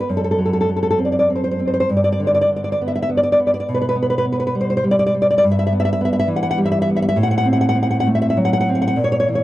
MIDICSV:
0, 0, Header, 1, 2, 480
1, 0, Start_track
1, 0, Tempo, 603622
1, 68, Time_signature, 3, 2, 24, 8
1, 1508, Tempo, 585366
1, 5348, Tempo, 598802
1, 7638, End_track
2, 0, Start_track
2, 0, Title_t, "Nylon-string guitar"
2, 0, Program_c, 0, 24
2, 3, Note_on_c, 0, 71, 73
2, 66, Note_off_c, 0, 71, 0
2, 74, Note_on_c, 0, 42, 65
2, 134, Note_on_c, 0, 69, 72
2, 183, Note_off_c, 0, 69, 0
2, 193, Note_on_c, 0, 69, 73
2, 237, Note_off_c, 0, 69, 0
2, 247, Note_on_c, 0, 69, 78
2, 305, Note_on_c, 0, 54, 48
2, 308, Note_off_c, 0, 69, 0
2, 361, Note_on_c, 0, 69, 73
2, 414, Note_off_c, 0, 69, 0
2, 423, Note_on_c, 0, 69, 76
2, 473, Note_off_c, 0, 69, 0
2, 482, Note_on_c, 0, 69, 76
2, 539, Note_off_c, 0, 54, 0
2, 545, Note_off_c, 0, 69, 0
2, 548, Note_on_c, 0, 54, 48
2, 607, Note_on_c, 0, 69, 67
2, 648, Note_off_c, 0, 69, 0
2, 657, Note_on_c, 0, 69, 79
2, 710, Note_off_c, 0, 69, 0
2, 720, Note_on_c, 0, 69, 83
2, 782, Note_off_c, 0, 69, 0
2, 782, Note_on_c, 0, 60, 50
2, 834, Note_on_c, 0, 74, 66
2, 882, Note_off_c, 0, 74, 0
2, 891, Note_on_c, 0, 74, 69
2, 937, Note_off_c, 0, 74, 0
2, 946, Note_on_c, 0, 74, 73
2, 1015, Note_off_c, 0, 74, 0
2, 1022, Note_off_c, 0, 60, 0
2, 1032, Note_on_c, 0, 60, 57
2, 1077, Note_on_c, 0, 72, 75
2, 1135, Note_off_c, 0, 72, 0
2, 1145, Note_on_c, 0, 72, 75
2, 1194, Note_off_c, 0, 72, 0
2, 1204, Note_on_c, 0, 72, 76
2, 1258, Note_off_c, 0, 60, 0
2, 1266, Note_off_c, 0, 72, 0
2, 1268, Note_off_c, 0, 54, 0
2, 1268, Note_on_c, 0, 60, 50
2, 1331, Note_on_c, 0, 72, 71
2, 1371, Note_off_c, 0, 72, 0
2, 1381, Note_on_c, 0, 72, 78
2, 1423, Note_off_c, 0, 72, 0
2, 1432, Note_on_c, 0, 72, 88
2, 1479, Note_off_c, 0, 42, 0
2, 1500, Note_off_c, 0, 72, 0
2, 1506, Note_on_c, 0, 43, 68
2, 1508, Note_off_c, 0, 60, 0
2, 1566, Note_on_c, 0, 74, 75
2, 1617, Note_off_c, 0, 74, 0
2, 1626, Note_on_c, 0, 74, 83
2, 1685, Note_off_c, 0, 74, 0
2, 1694, Note_on_c, 0, 74, 86
2, 1753, Note_off_c, 0, 74, 0
2, 1754, Note_on_c, 0, 50, 52
2, 1814, Note_on_c, 0, 74, 79
2, 1866, Note_off_c, 0, 74, 0
2, 1876, Note_on_c, 0, 74, 82
2, 1922, Note_off_c, 0, 74, 0
2, 1932, Note_on_c, 0, 74, 89
2, 1989, Note_off_c, 0, 50, 0
2, 1992, Note_off_c, 0, 74, 0
2, 1999, Note_on_c, 0, 50, 50
2, 2055, Note_on_c, 0, 74, 76
2, 2109, Note_off_c, 0, 74, 0
2, 2119, Note_on_c, 0, 74, 80
2, 2174, Note_off_c, 0, 74, 0
2, 2184, Note_on_c, 0, 74, 90
2, 2240, Note_off_c, 0, 74, 0
2, 2260, Note_on_c, 0, 59, 54
2, 2312, Note_on_c, 0, 76, 77
2, 2364, Note_off_c, 0, 76, 0
2, 2376, Note_on_c, 0, 76, 83
2, 2423, Note_off_c, 0, 76, 0
2, 2433, Note_on_c, 0, 76, 87
2, 2481, Note_off_c, 0, 59, 0
2, 2485, Note_off_c, 0, 76, 0
2, 2490, Note_on_c, 0, 59, 58
2, 2555, Note_on_c, 0, 74, 81
2, 2595, Note_off_c, 0, 74, 0
2, 2604, Note_on_c, 0, 74, 87
2, 2659, Note_off_c, 0, 74, 0
2, 2677, Note_on_c, 0, 74, 86
2, 2717, Note_off_c, 0, 50, 0
2, 2725, Note_off_c, 0, 74, 0
2, 2727, Note_off_c, 0, 59, 0
2, 2737, Note_on_c, 0, 59, 56
2, 2797, Note_on_c, 0, 74, 78
2, 2843, Note_off_c, 0, 74, 0
2, 2855, Note_on_c, 0, 74, 87
2, 2895, Note_off_c, 0, 74, 0
2, 2904, Note_on_c, 0, 74, 89
2, 2914, Note_off_c, 0, 43, 0
2, 2955, Note_off_c, 0, 74, 0
2, 2959, Note_off_c, 0, 59, 0
2, 2975, Note_on_c, 0, 47, 75
2, 3024, Note_on_c, 0, 71, 81
2, 3071, Note_off_c, 0, 71, 0
2, 3081, Note_on_c, 0, 71, 87
2, 3132, Note_off_c, 0, 71, 0
2, 3141, Note_on_c, 0, 71, 97
2, 3191, Note_off_c, 0, 71, 0
2, 3197, Note_on_c, 0, 59, 60
2, 3253, Note_on_c, 0, 71, 86
2, 3304, Note_off_c, 0, 71, 0
2, 3314, Note_on_c, 0, 71, 86
2, 3368, Note_off_c, 0, 71, 0
2, 3380, Note_on_c, 0, 71, 97
2, 3427, Note_off_c, 0, 59, 0
2, 3431, Note_off_c, 0, 71, 0
2, 3437, Note_on_c, 0, 59, 57
2, 3499, Note_on_c, 0, 71, 85
2, 3548, Note_off_c, 0, 71, 0
2, 3558, Note_on_c, 0, 71, 89
2, 3607, Note_off_c, 0, 71, 0
2, 3616, Note_on_c, 0, 71, 98
2, 3673, Note_off_c, 0, 71, 0
2, 3684, Note_on_c, 0, 55, 61
2, 3730, Note_on_c, 0, 72, 81
2, 3791, Note_off_c, 0, 72, 0
2, 3807, Note_on_c, 0, 72, 87
2, 3854, Note_off_c, 0, 72, 0
2, 3863, Note_on_c, 0, 72, 90
2, 3910, Note_off_c, 0, 55, 0
2, 3919, Note_off_c, 0, 72, 0
2, 3920, Note_on_c, 0, 55, 66
2, 3980, Note_on_c, 0, 74, 96
2, 4037, Note_off_c, 0, 74, 0
2, 4046, Note_on_c, 0, 74, 98
2, 4096, Note_off_c, 0, 74, 0
2, 4106, Note_on_c, 0, 74, 99
2, 4159, Note_off_c, 0, 74, 0
2, 4160, Note_off_c, 0, 59, 0
2, 4161, Note_off_c, 0, 55, 0
2, 4171, Note_on_c, 0, 55, 58
2, 4232, Note_on_c, 0, 74, 93
2, 4282, Note_off_c, 0, 74, 0
2, 4303, Note_on_c, 0, 74, 98
2, 4348, Note_off_c, 0, 74, 0
2, 4364, Note_on_c, 0, 74, 103
2, 4374, Note_off_c, 0, 47, 0
2, 4401, Note_off_c, 0, 55, 0
2, 4408, Note_off_c, 0, 74, 0
2, 4412, Note_on_c, 0, 43, 79
2, 4475, Note_on_c, 0, 76, 96
2, 4524, Note_off_c, 0, 76, 0
2, 4536, Note_on_c, 0, 76, 96
2, 4585, Note_off_c, 0, 76, 0
2, 4599, Note_on_c, 0, 76, 105
2, 4646, Note_off_c, 0, 76, 0
2, 4647, Note_on_c, 0, 59, 66
2, 4707, Note_on_c, 0, 76, 96
2, 4739, Note_off_c, 0, 76, 0
2, 4749, Note_on_c, 0, 76, 101
2, 4803, Note_off_c, 0, 76, 0
2, 4813, Note_on_c, 0, 76, 107
2, 4870, Note_off_c, 0, 59, 0
2, 4872, Note_off_c, 0, 76, 0
2, 4880, Note_on_c, 0, 59, 65
2, 4914, Note_on_c, 0, 76, 96
2, 4968, Note_off_c, 0, 76, 0
2, 4978, Note_on_c, 0, 76, 99
2, 5023, Note_off_c, 0, 76, 0
2, 5032, Note_on_c, 0, 76, 106
2, 5099, Note_on_c, 0, 52, 67
2, 5101, Note_off_c, 0, 76, 0
2, 5170, Note_on_c, 0, 78, 92
2, 5213, Note_off_c, 0, 78, 0
2, 5223, Note_on_c, 0, 78, 94
2, 5278, Note_off_c, 0, 78, 0
2, 5288, Note_on_c, 0, 78, 107
2, 5346, Note_on_c, 0, 55, 67
2, 5349, Note_off_c, 0, 78, 0
2, 5409, Note_on_c, 0, 76, 99
2, 5447, Note_off_c, 0, 76, 0
2, 5457, Note_on_c, 0, 76, 96
2, 5521, Note_off_c, 0, 76, 0
2, 5539, Note_on_c, 0, 76, 108
2, 5590, Note_off_c, 0, 59, 0
2, 5592, Note_off_c, 0, 76, 0
2, 5603, Note_on_c, 0, 59, 69
2, 5657, Note_on_c, 0, 76, 95
2, 5695, Note_off_c, 0, 76, 0
2, 5704, Note_on_c, 0, 76, 105
2, 5744, Note_off_c, 0, 76, 0
2, 5754, Note_on_c, 0, 76, 111
2, 5804, Note_off_c, 0, 43, 0
2, 5812, Note_off_c, 0, 52, 0
2, 5815, Note_on_c, 0, 45, 82
2, 5820, Note_off_c, 0, 76, 0
2, 5825, Note_off_c, 0, 55, 0
2, 5835, Note_off_c, 0, 59, 0
2, 5871, Note_on_c, 0, 78, 102
2, 5924, Note_off_c, 0, 78, 0
2, 5933, Note_on_c, 0, 78, 108
2, 5978, Note_off_c, 0, 78, 0
2, 5987, Note_on_c, 0, 78, 110
2, 6045, Note_on_c, 0, 60, 68
2, 6056, Note_off_c, 0, 78, 0
2, 6108, Note_on_c, 0, 78, 102
2, 6164, Note_off_c, 0, 78, 0
2, 6174, Note_on_c, 0, 78, 101
2, 6227, Note_off_c, 0, 78, 0
2, 6237, Note_on_c, 0, 78, 108
2, 6277, Note_off_c, 0, 60, 0
2, 6287, Note_on_c, 0, 60, 69
2, 6300, Note_off_c, 0, 78, 0
2, 6348, Note_on_c, 0, 78, 89
2, 6402, Note_off_c, 0, 78, 0
2, 6411, Note_on_c, 0, 78, 99
2, 6478, Note_off_c, 0, 78, 0
2, 6488, Note_on_c, 0, 78, 109
2, 6544, Note_on_c, 0, 57, 62
2, 6547, Note_off_c, 0, 78, 0
2, 6607, Note_on_c, 0, 76, 85
2, 6651, Note_off_c, 0, 76, 0
2, 6661, Note_on_c, 0, 76, 90
2, 6717, Note_off_c, 0, 76, 0
2, 6727, Note_on_c, 0, 76, 93
2, 6780, Note_off_c, 0, 57, 0
2, 6783, Note_on_c, 0, 54, 69
2, 6788, Note_off_c, 0, 76, 0
2, 6846, Note_on_c, 0, 78, 94
2, 6904, Note_off_c, 0, 78, 0
2, 6913, Note_on_c, 0, 78, 101
2, 6962, Note_off_c, 0, 78, 0
2, 6972, Note_on_c, 0, 78, 105
2, 7024, Note_off_c, 0, 60, 0
2, 7032, Note_off_c, 0, 78, 0
2, 7040, Note_on_c, 0, 60, 62
2, 7089, Note_on_c, 0, 78, 90
2, 7132, Note_off_c, 0, 78, 0
2, 7142, Note_on_c, 0, 78, 100
2, 7179, Note_off_c, 0, 78, 0
2, 7189, Note_on_c, 0, 78, 105
2, 7234, Note_off_c, 0, 45, 0
2, 7254, Note_off_c, 0, 54, 0
2, 7258, Note_on_c, 0, 46, 80
2, 7260, Note_off_c, 0, 78, 0
2, 7276, Note_off_c, 0, 60, 0
2, 7321, Note_on_c, 0, 73, 92
2, 7375, Note_off_c, 0, 73, 0
2, 7384, Note_on_c, 0, 73, 92
2, 7437, Note_off_c, 0, 73, 0
2, 7447, Note_on_c, 0, 73, 98
2, 7508, Note_off_c, 0, 73, 0
2, 7516, Note_on_c, 0, 52, 60
2, 7571, Note_on_c, 0, 73, 85
2, 7630, Note_off_c, 0, 73, 0
2, 7638, Note_off_c, 0, 46, 0
2, 7638, Note_off_c, 0, 52, 0
2, 7638, End_track
0, 0, End_of_file